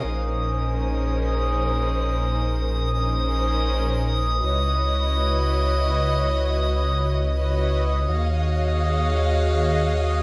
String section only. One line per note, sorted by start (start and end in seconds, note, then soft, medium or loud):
0.04 2.95 C#4 medium
0.04 2.95 D#4 medium
0.04 2.95 G#4 medium
0.04 2.95 A#4 medium
0.04 2.95 C5 medium
2.97 4.41 C#4 medium
2.97 4.41 D#4 medium
2.97 4.41 G#4 medium
2.97 4.41 A#4 medium
2.97 4.41 C5 medium
4.43 7.34 E4 medium
4.43 7.34 F#4 medium
4.43 7.34 B4 medium
4.43 7.34 C#5 medium
4.43 7.34 D#5 medium
7.36 8.07 E4 medium
7.36 8.07 F#4 medium
7.36 8.07 B4 medium
7.36 8.07 C#5 medium
7.36 8.07 D#5 medium
8.09 10.23 F#4 medium
8.09 10.23 G#4 medium
8.09 10.23 C#5 medium
8.09 10.23 D#5 medium
8.09 10.23 F5 medium